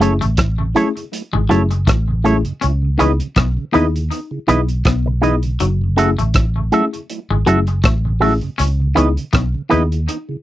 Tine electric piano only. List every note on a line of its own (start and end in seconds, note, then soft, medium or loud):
0.00 0.15 A3 loud
0.00 0.15 C#4 medium
0.00 0.15 E4 medium
0.00 0.15 G#4 loud
0.76 0.90 A3 medium
0.76 0.90 C#4 medium
0.76 0.90 E4 medium
0.76 0.90 G#4 loud
0.97 1.03 E4 soft
0.97 1.03 G#4 soft
1.34 1.40 E4 soft
1.34 1.40 G#4 soft
1.51 1.65 A3 medium
1.51 1.65 C#4 medium
1.51 1.65 E4 medium
1.51 1.65 G#4 loud
2.25 2.39 A3 medium
2.25 2.39 C#4 medium
2.25 2.39 E4 medium
2.25 2.39 G#4 loud
2.98 3.13 B3 medium
2.98 3.13 D#4 medium
2.98 3.13 E4 medium
2.98 3.13 G#4 loud
3.73 3.87 B3 medium
3.73 3.88 D#4 medium
3.73 3.88 E4 medium
3.73 3.88 G#4 loud
3.94 4.01 E4 soft
3.94 4.01 G#4 soft
4.31 4.38 E4 soft
4.31 4.38 G#4 soft
4.47 4.62 B3 medium
4.47 4.62 D#4 medium
4.47 4.62 E4 medium
4.47 4.62 G#4 medium
5.22 5.36 B3 medium
5.22 5.37 D#4 medium
5.22 5.37 E4 medium
5.22 5.37 G#4 medium
5.97 6.11 A3 loud
5.97 6.11 C#4 medium
5.97 6.11 E4 medium
5.97 6.11 G#4 loud
6.72 6.86 A3 medium
6.72 6.86 C#4 medium
6.72 6.86 E4 medium
6.72 6.86 G#4 loud
6.92 6.99 E4 soft
6.92 6.99 G#4 soft
7.30 7.37 E4 soft
7.30 7.37 G#4 soft
7.46 7.61 A3 medium
7.46 7.61 C#4 medium
7.46 7.61 E4 medium
7.46 7.61 G#4 medium
8.21 8.35 A3 medium
8.21 8.36 C#4 medium
8.21 8.36 E4 medium
8.21 8.36 G#4 loud
8.96 9.10 B3 medium
8.96 9.10 D#4 medium
8.96 9.10 E4 medium
8.96 9.11 G#4 loud
9.70 9.85 B3 loud
9.70 9.85 D#4 medium
9.70 9.85 E4 medium
9.70 9.85 G#4 loud
9.91 9.98 E4 soft
9.91 9.98 G#4 soft
10.29 10.35 E4 soft
10.29 10.35 G#4 soft